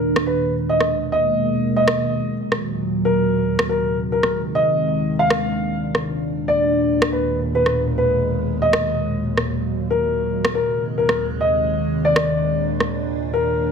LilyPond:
<<
  \new Staff \with { instrumentName = "Grand piano" } { \time 4/4 \key aes \dorian \tempo 4 = 140 bes'8 ces''8 r8 ees''8 r8 ees''4. | ees''4. r4. bes'4~ | bes'8 bes'8 r8 bes'8 r8 ees''4. | f''4. r4. d''4~ |
d''8 ces''8 r8 ces''8 r8 ces''4. | ees''4. r4. bes'4~ | bes'8 bes'8 r8 bes'8 r8 ees''4. | d''4. r4. bes'4 | }
  \new Staff \with { instrumentName = "Ambient pad" } { \clef bass \time 4/4 \key aes \dorian << { <ces aes bes>1 | <bes, ges>1 | <c ees aes>1 | <ees, bes, d'>1 |
<bes, ces aes>1 | <bes, ges>1 | <c ees aes>1 | <bes, d'>1 | } \\ { ees,1~ | ees,1~ | ees,1 | r1 |
r1 | r1 | ees,1~ | ees,1 | } >> }
  \new DrumStaff \with { instrumentName = "Drums" } \drummode { \time 4/4 r16 ss8. r8. ss16 r4 r4 | r16 ss8. r8. ss16 r4 r4 | r16 ss8. r8. ss16 r4 r4 | r16 ss8. r8. ss16 r4 r4 |
r16 ss8. r8. ss16 r4 r4 | r16 ss8. r8. ss16 r4 r4 | r16 ss8. r8. ss16 r4 r4 | r16 ss8. r8. ss16 r4 r4 | }
>>